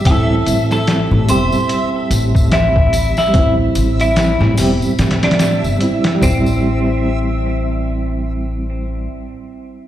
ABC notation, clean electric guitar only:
X:1
M:4/4
L:1/16
Q:"Swing 16ths" 1/4=73
K:Am
V:1 name="Clean electric guitar"
A3 A3 c3 z3 E3 E- | E z2 E3 z3 D2 z3 C2- | C16 |]